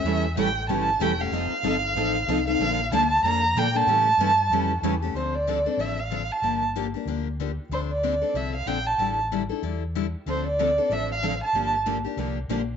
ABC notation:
X:1
M:4/4
L:1/8
Q:"Swing" 1/4=188
K:Dm
V:1 name="Violin"
e2 g2 a2 g f- | f6- f f- | f2 a2 b2 g a- | a6- a z |
c d3 e f2 a- | a z6 z | c d3 e f g a- | a z6 z |
c d3 e f2 a- | a z6 z |]
V:2 name="Steel-string acoustic guitar"
[^C,E,A,^CG] z [C,E,A,CG] z [C,E,A,CG] z [C,E,A,CG] [A,CG] | [F,C_EA] z [F,CEA] z [F,CEA] z [F,CEA] [CEA] | [D,F,B,DA] z [D,F,B,DA] z [D,F,B,DA] z [D,F,B,DA] [B,DA] | [^C,E,A,^CG] z [C,E,A,CG] z [C,E,A,CG] z [C,E,A,CG] [A,CG] |
[D,F,CDA] z [D,F,CDA] [CDA] [D,F,CDA] z [D,F,CDA] z | [D,F,B,DG] z [D,F,B,DG] [B,DG] [D,F,B,DG] z [D,F,B,DG] z | [D,F,CDA] z [D,F,CDA] [CDA] [D,F,CDA] z [D,F,CDA] z | [D,G,DEA] z [D,G,DEA] [DEA] [D,G,DEA] z [D,G,DEA] z |
[D,F,CDA] z [D,F,CDA] [CDA] [D,F,CDA] z [D,F,CDA] z | [D,F,B,DG] z [D,F,B,DG] [B,DG] [D,F,B,DG] z [D,F,B,DG] z |]
V:3 name="Steel-string acoustic guitar"
[E,G,^CEA] z [E,G,CEA] z [E,G,CEA] z [E,G,CEA] z | [F,C_EA] z [F,CEA] z [F,CEA] z [F,CEA] z | [D,F,B,DA] z [D,F,B,DA] z [D,F,B,DA] z [D,F,B,DA] z | [E,G,^CEA] z [E,G,CEA] z [E,G,CEA] z [E,G,CEA] z |
z8 | z8 | z8 | z8 |
[D,F,CDA] z [D,F,CDA] z [D,F,CDA] z [D,F,CDA] z | [D,F,B,DG] z [D,F,B,DG] z [D,F,B,DG] z [D,F,B,DG] z |]
V:4 name="Fingered electric bass" clef=bass
E,,2 A,,,2 G,,,2 E,,,2 | F,,, z G,,,2 A,,,2 C,,2 | B,,,2 D,,2 F,,2 B,,2 | A,,2 G,,2 F,,2 E,,2 |
D,,4 A,,,4 | G,,,4 D,,4 | D,,4 C,,2 B,,,2 | A,,,4 E,,4 |
D,,4 A,,,4 | G,,,4 C,,2 B,,,2 |]